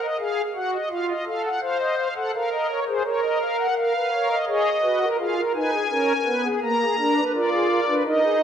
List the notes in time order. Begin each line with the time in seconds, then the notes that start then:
0.01 D#5
0.19 G#4 F5
0.55 F#4 F#5
0.73 D#5
0.90 F4 F5
1.09 D#5
1.26 A4 F5
1.45 F#5
1.61 C5 F5
1.79 D#5
1.98 F5
2.16 A4 F#5
2.34 A#4 F5
2.52 D#5
2.69 C#5
2.87 G#4 C5
3.04 A#4 C#5
3.23 D#5
3.41 F5
3.59 F#5
3.77 A#4 F5
3.95 B4
4.13 A#4 C#5
4.30 D#5
4.47 G#4 C#5 D#5
4.83 F#4 B4
5.01 A#4
5.19 F4 G#4 F5
5.37 A#4
5.55 D#4 B4 G#5
5.73 G#4
5.90 C#4 A#4
6.26 B3 B4
6.44 G#4
6.63 A#3 A#4 A#5
6.81 G#4
6.98 D4 A#4
7.17 B4
7.35 F4 A#4 D5
7.53 G#4
7.70 A#4
7.88 D4 B4
8.06 D#4 A#4 D#5
8.23 G#4